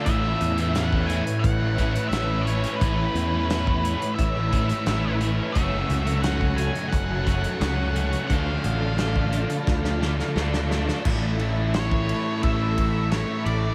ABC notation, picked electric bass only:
X:1
M:4/4
L:1/8
Q:1/4=87
K:A
V:1 name="Picked electric bass" clef=bass
A,,, E,,3 A,,,2 A,,,2 | A,,, E,,3 A,,,2 A,,,2 | F,,, C,,3 F,,,2 C,,2 | D,, A,,,3 D,,2 D,,2 |
A,,,4 A,,,3 A,,, |]